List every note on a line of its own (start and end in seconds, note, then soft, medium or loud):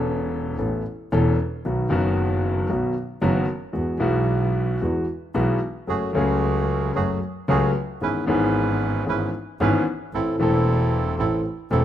0.00 0.55 E1 medium
0.00 0.55 E2 medium
0.00 0.54 E3 medium
0.00 0.54 B3 medium
0.00 0.55 C#4 medium
0.00 0.56 A4 medium
0.58 0.81 A1 medium
0.58 0.81 A1 soft
0.58 0.81 A2 medium
0.58 0.81 E3 soft
0.58 0.81 B3 soft
0.58 0.81 C#4 soft
0.58 0.81 A4 soft
1.12 1.34 E1 medium
1.12 1.35 E1 medium
1.12 1.35 E2 medium
1.12 1.34 E3 medium
1.12 1.34 B3 medium
1.12 1.35 C#4 medium
1.12 1.35 A4 medium
1.65 1.87 B1 soft
1.65 1.88 B1 medium
1.65 1.87 B2 soft
1.65 1.87 D#3 soft
1.65 1.87 F#3 soft
1.65 1.87 B3 soft
1.65 1.88 F#4 soft
1.89 2.66 F#1 medium
1.89 2.67 F#1 medium
1.89 2.66 F#2 medium
1.89 2.65 D#3 medium
1.89 2.66 F#3 medium
1.89 2.66 B3 medium
1.89 2.67 F#4 medium
2.69 2.92 B1 medium
2.69 2.93 B1 medium
2.69 2.92 B2 medium
2.69 2.92 D#3 soft
2.69 2.92 F#3 soft
2.69 2.92 B3 soft
2.69 2.92 F#4 soft
3.21 3.44 F#1 medium
3.21 3.45 F#1 medium
3.21 3.44 F#2 medium
3.21 3.44 D#3 medium
3.21 3.44 F#3 medium
3.21 3.45 B3 medium
3.21 3.45 F#4 medium
3.73 3.97 E2 soft
3.73 3.98 E2 medium
3.73 3.96 E3 soft
3.73 3.97 G#3 soft
3.73 3.97 B3 soft
3.73 3.97 F#4 soft
3.98 4.77 B1 medium
3.98 4.77 B2 medium
3.98 4.76 E3 medium
3.98 4.76 G#3 medium
3.98 4.77 B3 medium
3.98 4.77 F#4 medium
4.03 4.78 B1 medium
4.81 5.04 E2 medium
4.81 5.04 E3 soft
4.81 5.04 G#3 soft
4.81 5.04 B3 soft
4.81 5.04 F#4 soft
5.34 5.57 B1 medium
5.34 5.58 B1 medium
5.34 5.57 B2 medium
5.34 5.57 E3 medium
5.34 5.57 G#3 medium
5.34 5.58 B3 medium
5.34 5.58 F#4 medium
5.87 6.12 F#1 medium
5.87 6.11 F#2 soft
5.87 6.11 F#3 soft
5.87 6.11 A3 soft
5.87 6.11 C#4 soft
5.87 6.11 F#4 soft
5.87 6.11 G#4 soft
5.87 6.11 G#4 medium
6.13 6.92 C#2 medium
6.13 6.92 C#3 medium
6.13 6.91 F#3 medium
6.13 6.91 A3 medium
6.13 6.92 A3 medium
6.13 6.92 C#4 medium
6.13 6.92 F#4 medium
6.13 6.92 G#4 medium
6.17 6.93 G#4 medium
6.95 7.19 F#1 medium
6.95 7.18 F#2 medium
6.95 7.18 F#3 soft
6.95 7.18 A3 soft
6.95 7.18 C#4 soft
6.95 7.18 F#4 soft
6.95 7.18 G#4 medium
6.95 7.18 G#4 soft
7.48 7.71 C#2 medium
7.48 7.71 C#3 medium
7.48 7.71 F#3 medium
7.48 7.71 A3 medium
7.48 7.71 C#4 medium
7.48 7.71 F#4 medium
7.48 7.71 G#4 medium
7.48 7.72 G#4 medium
8.01 8.24 G#1 soft
8.01 8.24 G#2 soft
8.01 8.24 E3 soft
8.01 8.24 B3 soft
8.01 8.24 C#4 soft
8.01 8.25 C#4 soft
8.01 8.25 E4 soft
8.01 8.24 G#4 soft
8.01 8.25 B4 medium
8.26 9.04 G#1 medium
8.26 9.04 G#2 medium
8.26 9.03 E3 medium
8.26 9.03 B3 medium
8.26 9.04 C#4 medium
8.26 9.05 E4 medium
8.26 9.05 G#4 medium
8.26 9.05 B4 medium
9.06 9.29 G#1 soft
9.06 9.30 G#1 medium
9.06 9.30 G#2 soft
9.06 9.30 E3 soft
9.06 9.30 B3 soft
9.06 9.30 C#4 soft
9.06 9.30 E4 soft
9.06 9.30 G#4 soft
9.06 9.31 B4 medium
9.60 9.83 G#1 medium
9.60 9.83 G#2 medium
9.60 9.83 E3 medium
9.60 9.83 B3 medium
9.60 9.83 C#4 medium
9.60 9.83 E4 medium
9.60 9.83 G#4 medium
9.60 9.84 B4 medium
10.13 10.36 A1 medium
10.13 10.36 A1 soft
10.13 10.37 A2 soft
10.13 10.37 E3 soft
10.13 10.37 A3 soft
10.13 10.36 C4 medium
10.13 10.37 C4 soft
10.13 10.36 E4 soft
10.13 10.36 A4 medium
10.13 10.37 A4 soft
10.39 11.15 E1 loud
10.39 11.15 E1 medium
10.39 11.16 E2 medium
10.39 11.15 E3 medium
10.39 11.15 A3 medium
10.39 11.15 C4 medium
10.39 11.16 C4 medium
10.39 11.15 E4 medium
10.39 11.16 A4 medium
10.39 11.17 A4 medium
11.19 11.41 A1 medium
11.19 11.42 A1 soft
11.19 11.42 A2 soft
11.19 11.42 E3 soft
11.19 11.42 A3 soft
11.19 11.41 C4 medium
11.19 11.42 C4 soft
11.19 11.41 E4 soft
11.19 11.41 A4 medium
11.19 11.42 A4 soft
11.71 11.85 E1 medium
11.71 11.85 E2 medium
11.71 11.85 E3 medium
11.71 11.85 A3 medium
11.71 11.85 C4 medium
11.71 11.85 E4 medium
11.71 11.85 A4 medium